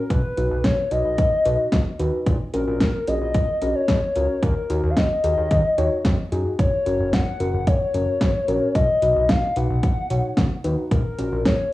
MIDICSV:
0, 0, Header, 1, 5, 480
1, 0, Start_track
1, 0, Key_signature, 6, "major"
1, 0, Tempo, 540541
1, 91, Time_signature, 4, 2, 24, 8
1, 10418, End_track
2, 0, Start_track
2, 0, Title_t, "Soft synth lead"
2, 0, Program_c, 0, 80
2, 0, Note_on_c, 0, 70, 99
2, 90, Note_on_c, 0, 71, 106
2, 103, Note_off_c, 0, 70, 0
2, 570, Note_on_c, 0, 73, 105
2, 583, Note_off_c, 0, 71, 0
2, 810, Note_on_c, 0, 75, 115
2, 823, Note_off_c, 0, 73, 0
2, 1771, Note_off_c, 0, 75, 0
2, 2251, Note_on_c, 0, 70, 104
2, 2730, Note_on_c, 0, 75, 122
2, 2743, Note_off_c, 0, 70, 0
2, 3331, Note_on_c, 0, 73, 106
2, 3344, Note_off_c, 0, 75, 0
2, 3931, Note_on_c, 0, 70, 98
2, 3945, Note_off_c, 0, 73, 0
2, 4350, Note_on_c, 0, 77, 68
2, 4363, Note_off_c, 0, 70, 0
2, 4410, Note_on_c, 0, 75, 105
2, 4423, Note_off_c, 0, 77, 0
2, 5611, Note_off_c, 0, 75, 0
2, 5851, Note_on_c, 0, 73, 105
2, 6332, Note_on_c, 0, 78, 113
2, 6345, Note_off_c, 0, 73, 0
2, 6812, Note_on_c, 0, 73, 109
2, 6825, Note_off_c, 0, 78, 0
2, 7767, Note_off_c, 0, 73, 0
2, 7772, Note_on_c, 0, 75, 107
2, 8252, Note_on_c, 0, 77, 96
2, 8266, Note_off_c, 0, 75, 0
2, 8493, Note_on_c, 0, 78, 105
2, 8506, Note_off_c, 0, 77, 0
2, 9452, Note_off_c, 0, 78, 0
2, 9692, Note_on_c, 0, 70, 94
2, 10172, Note_on_c, 0, 73, 94
2, 10185, Note_off_c, 0, 70, 0
2, 10418, Note_off_c, 0, 73, 0
2, 10418, End_track
3, 0, Start_track
3, 0, Title_t, "Synth keys"
3, 0, Program_c, 1, 88
3, 330, Note_on_c, 1, 63, 71
3, 330, Note_on_c, 1, 71, 79
3, 331, Note_on_c, 1, 66, 68
3, 511, Note_off_c, 1, 63, 0
3, 511, Note_off_c, 1, 66, 0
3, 511, Note_off_c, 1, 71, 0
3, 810, Note_on_c, 1, 63, 71
3, 810, Note_on_c, 1, 71, 79
3, 811, Note_on_c, 1, 66, 63
3, 991, Note_off_c, 1, 63, 0
3, 991, Note_off_c, 1, 66, 0
3, 991, Note_off_c, 1, 71, 0
3, 1291, Note_on_c, 1, 63, 73
3, 1291, Note_on_c, 1, 66, 67
3, 1291, Note_on_c, 1, 71, 84
3, 1471, Note_off_c, 1, 63, 0
3, 1471, Note_off_c, 1, 66, 0
3, 1471, Note_off_c, 1, 71, 0
3, 1771, Note_on_c, 1, 63, 87
3, 1771, Note_on_c, 1, 66, 78
3, 1771, Note_on_c, 1, 71, 97
3, 1951, Note_off_c, 1, 63, 0
3, 1951, Note_off_c, 1, 66, 0
3, 1951, Note_off_c, 1, 71, 0
3, 2251, Note_on_c, 1, 61, 70
3, 2251, Note_on_c, 1, 66, 68
3, 2251, Note_on_c, 1, 70, 82
3, 2431, Note_off_c, 1, 61, 0
3, 2431, Note_off_c, 1, 66, 0
3, 2431, Note_off_c, 1, 70, 0
3, 2731, Note_on_c, 1, 61, 71
3, 2731, Note_on_c, 1, 66, 66
3, 2732, Note_on_c, 1, 68, 77
3, 2911, Note_off_c, 1, 61, 0
3, 2911, Note_off_c, 1, 66, 0
3, 2911, Note_off_c, 1, 68, 0
3, 3212, Note_on_c, 1, 61, 73
3, 3212, Note_on_c, 1, 66, 66
3, 3212, Note_on_c, 1, 70, 80
3, 3392, Note_off_c, 1, 61, 0
3, 3392, Note_off_c, 1, 66, 0
3, 3392, Note_off_c, 1, 70, 0
3, 3691, Note_on_c, 1, 61, 71
3, 3692, Note_on_c, 1, 66, 67
3, 3692, Note_on_c, 1, 70, 79
3, 3871, Note_off_c, 1, 61, 0
3, 3871, Note_off_c, 1, 66, 0
3, 3871, Note_off_c, 1, 70, 0
3, 4172, Note_on_c, 1, 63, 73
3, 4172, Note_on_c, 1, 66, 68
3, 4172, Note_on_c, 1, 70, 80
3, 4352, Note_off_c, 1, 63, 0
3, 4352, Note_off_c, 1, 66, 0
3, 4352, Note_off_c, 1, 70, 0
3, 4652, Note_on_c, 1, 63, 72
3, 4652, Note_on_c, 1, 66, 64
3, 4652, Note_on_c, 1, 68, 78
3, 4831, Note_off_c, 1, 63, 0
3, 4831, Note_off_c, 1, 66, 0
3, 4831, Note_off_c, 1, 68, 0
3, 5132, Note_on_c, 1, 63, 83
3, 5132, Note_on_c, 1, 66, 79
3, 5132, Note_on_c, 1, 73, 94
3, 5311, Note_off_c, 1, 66, 0
3, 5312, Note_off_c, 1, 63, 0
3, 5312, Note_off_c, 1, 73, 0
3, 5611, Note_on_c, 1, 63, 86
3, 5611, Note_on_c, 1, 68, 96
3, 5612, Note_on_c, 1, 66, 77
3, 5791, Note_off_c, 1, 63, 0
3, 5791, Note_off_c, 1, 66, 0
3, 5791, Note_off_c, 1, 68, 0
3, 6091, Note_on_c, 1, 70, 78
3, 6092, Note_on_c, 1, 61, 74
3, 6092, Note_on_c, 1, 66, 65
3, 6271, Note_off_c, 1, 61, 0
3, 6271, Note_off_c, 1, 66, 0
3, 6271, Note_off_c, 1, 70, 0
3, 6572, Note_on_c, 1, 61, 69
3, 6572, Note_on_c, 1, 66, 65
3, 6572, Note_on_c, 1, 70, 77
3, 6751, Note_off_c, 1, 61, 0
3, 6751, Note_off_c, 1, 66, 0
3, 6751, Note_off_c, 1, 70, 0
3, 7051, Note_on_c, 1, 66, 67
3, 7052, Note_on_c, 1, 61, 72
3, 7052, Note_on_c, 1, 70, 82
3, 7231, Note_off_c, 1, 61, 0
3, 7231, Note_off_c, 1, 66, 0
3, 7231, Note_off_c, 1, 70, 0
3, 7531, Note_on_c, 1, 61, 85
3, 7531, Note_on_c, 1, 66, 78
3, 7531, Note_on_c, 1, 70, 96
3, 7711, Note_off_c, 1, 61, 0
3, 7711, Note_off_c, 1, 66, 0
3, 7711, Note_off_c, 1, 70, 0
3, 8011, Note_on_c, 1, 63, 74
3, 8011, Note_on_c, 1, 66, 66
3, 8011, Note_on_c, 1, 71, 81
3, 8191, Note_off_c, 1, 63, 0
3, 8191, Note_off_c, 1, 66, 0
3, 8191, Note_off_c, 1, 71, 0
3, 8492, Note_on_c, 1, 63, 72
3, 8492, Note_on_c, 1, 66, 67
3, 8492, Note_on_c, 1, 71, 77
3, 8671, Note_off_c, 1, 71, 0
3, 8672, Note_off_c, 1, 63, 0
3, 8672, Note_off_c, 1, 66, 0
3, 8972, Note_on_c, 1, 63, 72
3, 8972, Note_on_c, 1, 66, 67
3, 8972, Note_on_c, 1, 73, 83
3, 9151, Note_off_c, 1, 63, 0
3, 9151, Note_off_c, 1, 66, 0
3, 9151, Note_off_c, 1, 73, 0
3, 9451, Note_on_c, 1, 63, 90
3, 9451, Note_on_c, 1, 66, 83
3, 9451, Note_on_c, 1, 71, 95
3, 9631, Note_off_c, 1, 63, 0
3, 9631, Note_off_c, 1, 66, 0
3, 9631, Note_off_c, 1, 71, 0
3, 9931, Note_on_c, 1, 66, 70
3, 9932, Note_on_c, 1, 61, 73
3, 9932, Note_on_c, 1, 70, 82
3, 10111, Note_off_c, 1, 61, 0
3, 10111, Note_off_c, 1, 66, 0
3, 10111, Note_off_c, 1, 70, 0
3, 10418, End_track
4, 0, Start_track
4, 0, Title_t, "Analog synth bass"
4, 0, Program_c, 2, 38
4, 91, Note_on_c, 2, 35, 108
4, 200, Note_off_c, 2, 35, 0
4, 331, Note_on_c, 2, 35, 98
4, 440, Note_off_c, 2, 35, 0
4, 451, Note_on_c, 2, 35, 99
4, 560, Note_off_c, 2, 35, 0
4, 574, Note_on_c, 2, 35, 97
4, 681, Note_off_c, 2, 35, 0
4, 811, Note_on_c, 2, 35, 103
4, 920, Note_off_c, 2, 35, 0
4, 931, Note_on_c, 2, 35, 94
4, 1040, Note_off_c, 2, 35, 0
4, 1052, Note_on_c, 2, 35, 99
4, 1160, Note_off_c, 2, 35, 0
4, 1291, Note_on_c, 2, 35, 100
4, 1400, Note_off_c, 2, 35, 0
4, 1532, Note_on_c, 2, 37, 99
4, 1640, Note_off_c, 2, 37, 0
4, 1771, Note_on_c, 2, 39, 84
4, 1880, Note_off_c, 2, 39, 0
4, 2011, Note_on_c, 2, 34, 102
4, 2120, Note_off_c, 2, 34, 0
4, 2251, Note_on_c, 2, 34, 94
4, 2359, Note_off_c, 2, 34, 0
4, 2371, Note_on_c, 2, 34, 100
4, 2479, Note_off_c, 2, 34, 0
4, 2494, Note_on_c, 2, 34, 104
4, 2601, Note_off_c, 2, 34, 0
4, 2731, Note_on_c, 2, 34, 96
4, 2840, Note_off_c, 2, 34, 0
4, 2851, Note_on_c, 2, 34, 93
4, 2960, Note_off_c, 2, 34, 0
4, 2972, Note_on_c, 2, 34, 95
4, 3080, Note_off_c, 2, 34, 0
4, 3211, Note_on_c, 2, 34, 102
4, 3320, Note_off_c, 2, 34, 0
4, 3452, Note_on_c, 2, 35, 103
4, 3560, Note_off_c, 2, 35, 0
4, 3692, Note_on_c, 2, 37, 92
4, 3800, Note_off_c, 2, 37, 0
4, 3932, Note_on_c, 2, 39, 100
4, 4040, Note_off_c, 2, 39, 0
4, 4172, Note_on_c, 2, 39, 102
4, 4280, Note_off_c, 2, 39, 0
4, 4291, Note_on_c, 2, 39, 100
4, 4400, Note_off_c, 2, 39, 0
4, 4414, Note_on_c, 2, 39, 90
4, 4521, Note_off_c, 2, 39, 0
4, 4652, Note_on_c, 2, 39, 99
4, 4760, Note_off_c, 2, 39, 0
4, 4772, Note_on_c, 2, 39, 97
4, 4880, Note_off_c, 2, 39, 0
4, 4892, Note_on_c, 2, 39, 100
4, 5000, Note_off_c, 2, 39, 0
4, 5132, Note_on_c, 2, 39, 104
4, 5240, Note_off_c, 2, 39, 0
4, 5372, Note_on_c, 2, 41, 98
4, 5480, Note_off_c, 2, 41, 0
4, 5612, Note_on_c, 2, 42, 92
4, 5720, Note_off_c, 2, 42, 0
4, 5851, Note_on_c, 2, 30, 104
4, 5960, Note_off_c, 2, 30, 0
4, 6092, Note_on_c, 2, 30, 107
4, 6200, Note_off_c, 2, 30, 0
4, 6212, Note_on_c, 2, 30, 97
4, 6320, Note_off_c, 2, 30, 0
4, 6334, Note_on_c, 2, 30, 92
4, 6441, Note_off_c, 2, 30, 0
4, 6572, Note_on_c, 2, 30, 105
4, 6680, Note_off_c, 2, 30, 0
4, 6692, Note_on_c, 2, 30, 95
4, 6800, Note_off_c, 2, 30, 0
4, 6812, Note_on_c, 2, 30, 98
4, 6920, Note_off_c, 2, 30, 0
4, 7052, Note_on_c, 2, 30, 89
4, 7160, Note_off_c, 2, 30, 0
4, 7292, Note_on_c, 2, 32, 101
4, 7400, Note_off_c, 2, 32, 0
4, 7532, Note_on_c, 2, 34, 95
4, 7640, Note_off_c, 2, 34, 0
4, 7772, Note_on_c, 2, 35, 106
4, 7880, Note_off_c, 2, 35, 0
4, 8012, Note_on_c, 2, 35, 96
4, 8120, Note_off_c, 2, 35, 0
4, 8132, Note_on_c, 2, 35, 97
4, 8240, Note_off_c, 2, 35, 0
4, 8254, Note_on_c, 2, 35, 97
4, 8361, Note_off_c, 2, 35, 0
4, 8492, Note_on_c, 2, 35, 100
4, 8600, Note_off_c, 2, 35, 0
4, 8612, Note_on_c, 2, 35, 93
4, 8720, Note_off_c, 2, 35, 0
4, 8732, Note_on_c, 2, 35, 101
4, 8840, Note_off_c, 2, 35, 0
4, 8972, Note_on_c, 2, 35, 100
4, 9080, Note_off_c, 2, 35, 0
4, 9212, Note_on_c, 2, 37, 98
4, 9320, Note_off_c, 2, 37, 0
4, 9452, Note_on_c, 2, 39, 84
4, 9560, Note_off_c, 2, 39, 0
4, 9692, Note_on_c, 2, 34, 107
4, 9800, Note_off_c, 2, 34, 0
4, 9932, Note_on_c, 2, 34, 96
4, 10040, Note_off_c, 2, 34, 0
4, 10052, Note_on_c, 2, 34, 102
4, 10160, Note_off_c, 2, 34, 0
4, 10174, Note_on_c, 2, 34, 100
4, 10281, Note_off_c, 2, 34, 0
4, 10418, End_track
5, 0, Start_track
5, 0, Title_t, "Drums"
5, 91, Note_on_c, 9, 36, 112
5, 91, Note_on_c, 9, 42, 72
5, 180, Note_off_c, 9, 36, 0
5, 180, Note_off_c, 9, 42, 0
5, 332, Note_on_c, 9, 42, 69
5, 421, Note_off_c, 9, 42, 0
5, 571, Note_on_c, 9, 38, 115
5, 572, Note_on_c, 9, 42, 73
5, 574, Note_on_c, 9, 36, 97
5, 660, Note_off_c, 9, 38, 0
5, 661, Note_off_c, 9, 42, 0
5, 663, Note_off_c, 9, 36, 0
5, 811, Note_on_c, 9, 42, 73
5, 899, Note_off_c, 9, 42, 0
5, 1050, Note_on_c, 9, 42, 79
5, 1052, Note_on_c, 9, 36, 114
5, 1139, Note_off_c, 9, 42, 0
5, 1141, Note_off_c, 9, 36, 0
5, 1292, Note_on_c, 9, 42, 78
5, 1381, Note_off_c, 9, 42, 0
5, 1529, Note_on_c, 9, 38, 112
5, 1530, Note_on_c, 9, 42, 82
5, 1532, Note_on_c, 9, 36, 113
5, 1617, Note_off_c, 9, 38, 0
5, 1619, Note_off_c, 9, 42, 0
5, 1621, Note_off_c, 9, 36, 0
5, 1772, Note_on_c, 9, 42, 66
5, 1860, Note_off_c, 9, 42, 0
5, 2011, Note_on_c, 9, 36, 116
5, 2011, Note_on_c, 9, 42, 72
5, 2100, Note_off_c, 9, 36, 0
5, 2100, Note_off_c, 9, 42, 0
5, 2253, Note_on_c, 9, 42, 71
5, 2342, Note_off_c, 9, 42, 0
5, 2491, Note_on_c, 9, 38, 118
5, 2493, Note_on_c, 9, 42, 73
5, 2494, Note_on_c, 9, 36, 100
5, 2580, Note_off_c, 9, 38, 0
5, 2582, Note_off_c, 9, 42, 0
5, 2583, Note_off_c, 9, 36, 0
5, 2731, Note_on_c, 9, 42, 73
5, 2820, Note_off_c, 9, 42, 0
5, 2971, Note_on_c, 9, 42, 80
5, 2972, Note_on_c, 9, 36, 118
5, 3059, Note_off_c, 9, 42, 0
5, 3061, Note_off_c, 9, 36, 0
5, 3212, Note_on_c, 9, 42, 78
5, 3301, Note_off_c, 9, 42, 0
5, 3448, Note_on_c, 9, 38, 114
5, 3450, Note_on_c, 9, 42, 84
5, 3452, Note_on_c, 9, 36, 116
5, 3537, Note_off_c, 9, 38, 0
5, 3538, Note_off_c, 9, 42, 0
5, 3541, Note_off_c, 9, 36, 0
5, 3691, Note_on_c, 9, 42, 65
5, 3780, Note_off_c, 9, 42, 0
5, 3931, Note_on_c, 9, 36, 116
5, 3931, Note_on_c, 9, 42, 71
5, 4020, Note_off_c, 9, 36, 0
5, 4020, Note_off_c, 9, 42, 0
5, 4173, Note_on_c, 9, 42, 68
5, 4262, Note_off_c, 9, 42, 0
5, 4411, Note_on_c, 9, 38, 120
5, 4413, Note_on_c, 9, 42, 75
5, 4414, Note_on_c, 9, 36, 96
5, 4500, Note_off_c, 9, 38, 0
5, 4502, Note_off_c, 9, 42, 0
5, 4503, Note_off_c, 9, 36, 0
5, 4652, Note_on_c, 9, 42, 73
5, 4740, Note_off_c, 9, 42, 0
5, 4891, Note_on_c, 9, 42, 81
5, 4892, Note_on_c, 9, 36, 115
5, 4979, Note_off_c, 9, 42, 0
5, 4981, Note_off_c, 9, 36, 0
5, 5132, Note_on_c, 9, 42, 78
5, 5221, Note_off_c, 9, 42, 0
5, 5369, Note_on_c, 9, 38, 115
5, 5370, Note_on_c, 9, 42, 82
5, 5372, Note_on_c, 9, 36, 118
5, 5458, Note_off_c, 9, 38, 0
5, 5459, Note_off_c, 9, 42, 0
5, 5461, Note_off_c, 9, 36, 0
5, 5612, Note_on_c, 9, 42, 68
5, 5700, Note_off_c, 9, 42, 0
5, 5851, Note_on_c, 9, 36, 115
5, 5851, Note_on_c, 9, 42, 74
5, 5940, Note_off_c, 9, 36, 0
5, 5940, Note_off_c, 9, 42, 0
5, 6093, Note_on_c, 9, 42, 67
5, 6182, Note_off_c, 9, 42, 0
5, 6331, Note_on_c, 9, 38, 118
5, 6333, Note_on_c, 9, 42, 74
5, 6334, Note_on_c, 9, 36, 100
5, 6420, Note_off_c, 9, 38, 0
5, 6422, Note_off_c, 9, 42, 0
5, 6423, Note_off_c, 9, 36, 0
5, 6571, Note_on_c, 9, 42, 75
5, 6660, Note_off_c, 9, 42, 0
5, 6811, Note_on_c, 9, 42, 80
5, 6812, Note_on_c, 9, 36, 115
5, 6900, Note_off_c, 9, 42, 0
5, 6901, Note_off_c, 9, 36, 0
5, 7052, Note_on_c, 9, 42, 74
5, 7141, Note_off_c, 9, 42, 0
5, 7289, Note_on_c, 9, 38, 118
5, 7290, Note_on_c, 9, 42, 86
5, 7293, Note_on_c, 9, 36, 118
5, 7378, Note_off_c, 9, 38, 0
5, 7379, Note_off_c, 9, 42, 0
5, 7381, Note_off_c, 9, 36, 0
5, 7531, Note_on_c, 9, 42, 65
5, 7620, Note_off_c, 9, 42, 0
5, 7772, Note_on_c, 9, 36, 113
5, 7772, Note_on_c, 9, 42, 72
5, 7860, Note_off_c, 9, 36, 0
5, 7860, Note_off_c, 9, 42, 0
5, 8013, Note_on_c, 9, 42, 71
5, 8102, Note_off_c, 9, 42, 0
5, 8252, Note_on_c, 9, 38, 118
5, 8253, Note_on_c, 9, 42, 74
5, 8254, Note_on_c, 9, 36, 100
5, 8340, Note_off_c, 9, 38, 0
5, 8342, Note_off_c, 9, 42, 0
5, 8343, Note_off_c, 9, 36, 0
5, 8491, Note_on_c, 9, 42, 75
5, 8580, Note_off_c, 9, 42, 0
5, 8731, Note_on_c, 9, 42, 80
5, 8732, Note_on_c, 9, 36, 113
5, 8820, Note_off_c, 9, 42, 0
5, 8821, Note_off_c, 9, 36, 0
5, 8972, Note_on_c, 9, 42, 80
5, 9061, Note_off_c, 9, 42, 0
5, 9209, Note_on_c, 9, 38, 116
5, 9211, Note_on_c, 9, 42, 84
5, 9213, Note_on_c, 9, 36, 117
5, 9298, Note_off_c, 9, 38, 0
5, 9299, Note_off_c, 9, 42, 0
5, 9301, Note_off_c, 9, 36, 0
5, 9452, Note_on_c, 9, 42, 69
5, 9541, Note_off_c, 9, 42, 0
5, 9692, Note_on_c, 9, 36, 115
5, 9692, Note_on_c, 9, 42, 74
5, 9780, Note_off_c, 9, 36, 0
5, 9781, Note_off_c, 9, 42, 0
5, 9933, Note_on_c, 9, 42, 70
5, 10022, Note_off_c, 9, 42, 0
5, 10171, Note_on_c, 9, 38, 120
5, 10173, Note_on_c, 9, 42, 72
5, 10174, Note_on_c, 9, 36, 104
5, 10260, Note_off_c, 9, 38, 0
5, 10262, Note_off_c, 9, 42, 0
5, 10263, Note_off_c, 9, 36, 0
5, 10418, End_track
0, 0, End_of_file